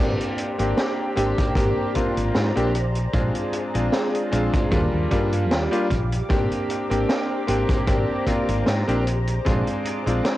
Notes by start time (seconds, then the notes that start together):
Already playing: A#3 C4
0.00 G#1 D4 G4 C5 D5 A#5
0.20 closed hi-hat
0.38 closed hi-hat
0.58 G#1 A#3 C4 D4 G4, closed hi-hat
0.77 snare, closed hi-hat
1.16 G#1 A#3 C4 D4 G4, closed hi-hat
1.38 kick, closed hi-hat
1.55 G#1 A#3 C4 D4 G4, kick, closed hi-hat
1.95 A#3 C4 D4 F4, kick, closed hi-hat
2.17 G#1, closed hi-hat
2.35 G#2, snare, closed hi-hat
2.56 A#1 A#3 C4 D4 G4, closed hi-hat
2.75 G#4, closed hi-hat
2.95 closed hi-hat
3.13 A#1 G#3 C4 D4 F4, kick, closed hi-hat
3.35 closed hi-hat
3.53 closed hi-hat
3.74 A#1 G#3 C4 D4 F4, closed hi-hat
3.92 snare, closed hi-hat
4.15 closed hi-hat
4.31 A#1 G#3 C4 D4 F4, closed hi-hat
4.54 kick, closed hi-hat
4.71 D#2 G3 A#3 D4 F4 G4 F5 D6, kick, closed hi-hat
4.94 D#2
5.11 G2 G3 A#3 D4 F4, kick, closed hi-hat
5.32 closed hi-hat
5.51 D#2, snare, closed hi-hat
5.71 G3 A#3 D4 F4, closed hi-hat
5.90 A#1, kick, closed hi-hat
6.12 closed hi-hat
6.29 G#1 A#3 C4 D4 G4 C5 A#5, kick, closed hi-hat
6.51 closed hi-hat
6.70 closed hi-hat
6.90 G#1 A#3 C4 D4 G4, closed hi-hat
7.09 snare, closed hi-hat
7.47 G#1 A#3 C4 D4 G4, closed hi-hat
7.69 kick, closed hi-hat
7.87 G#1 A#3 C4 D4 G4, kick, closed hi-hat
8.26 A#3 C4 D4 F4, kick, closed hi-hat
8.48 G#1, closed hi-hat
8.66 G#2, snare, closed hi-hat
8.87 A#1 A#3 C4 D4 G4, closed hi-hat
9.06 G#4 D6, closed hi-hat
9.27 closed hi-hat
9.45 A#1 G#3 C4 D4 F4, kick, closed hi-hat
9.67 closed hi-hat
9.85 closed hi-hat
10.06 A#1 G#3 C4 D4 F4, closed hi-hat
10.25 snare, closed hi-hat